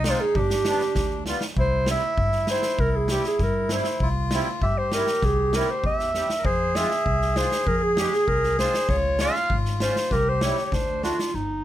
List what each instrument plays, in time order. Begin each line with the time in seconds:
Already playing: upright bass C2, melodica D#4
0.04 accordion G#3 C4 F4, clarinet C5, snare
0.21 clarinet G#4
0.35 upright bass G1, melodica D4, clarinet G4, kick
0.50 snare
0.65 accordion G3 B3 D4, snare
0.80 snare
0.95 upright bass D2, kick, snare
1.26 accordion G3 B3 F4, snare
1.41 snare
1.57 upright bass C2, melodica E4, clarinet C5, kick
1.86 accordion G3 C4 E4, snare
1.91 clarinet E5
2.18 upright bass G2, kick
2.32 snare
2.47 accordion G3 C4 E4, clarinet C5, snare
2.62 snare
2.79 upright bass C2, clarinet A#4, kick
2.92 clarinet A#4
2.96 clarinet G#4
3.08 accordion G3 C4 G4, clarinet G4, snare
3.24 clarinet G#4, snare
3.39 upright bass G2, kick, snare
3.43 clarinet A#4
3.69 accordion G3 C4 E4, clarinet C5, snare
3.84 snare
4.00 upright bass C2, melodica F4, kick
4.31 accordion G3 C4 E4, snare
4.62 upright bass G2, melodica G4, clarinet E5, kick
4.78 clarinet C5
4.92 accordion G3 C4 E4, clarinet A#4, snare
5.07 snare
5.22 upright bass C2, clarinet G#4, kick, snare
5.53 accordion G3 C4 E4, clarinet A#4, snare
5.71 clarinet C5
5.84 upright bass E2, clarinet E5, kick
5.99 snare
6.14 accordion G3 C4 G4, snare
6.30 snare
6.38 melodica A#4
6.45 upright bass F2, melodica G#4, clarinet C5, kick
6.75 accordion G#3 C4 F4, clarinet E5, snare
6.91 snare
7.06 upright bass C2, kick
7.22 snare
7.36 accordion G#3 C4 F4, clarinet C5, snare
7.51 snare
7.66 upright bass F2, clarinet A#4, kick
7.78 clarinet A#4
7.83 clarinet G#4
7.97 accordion G#3 C4 G4, clarinet G4, snare
8.13 clarinet G#4, snare
8.28 upright bass C2, clarinet A#4, kick
8.43 snare
8.59 accordion G#3 C4 F4, clarinet C5, snare
8.74 snare
8.89 upright bass C#2, melodica F4, clarinet C#5, kick, snare
9.19 accordion G#3 C#4 F4, clarinet F5, snare
9.35 snare
9.50 upright bass G#1, kick
9.65 snare
9.80 accordion G#3 C#4 F4, clarinet C5, snare
9.96 snare
10.11 upright bass C2, melodica G4, clarinet A#4, kick, snare
10.29 clarinet C5
10.41 accordion G3 C4 E4, clarinet C#5, snare
10.57 snare
10.66 clarinet C#5
10.72 upright bass D2, melodica D4, clarinet C5, kick, snare
11.02 accordion A3 D4 F#4, clarinet F4, snare
11.19 snare
11.34 upright bass G1, clarinet D#4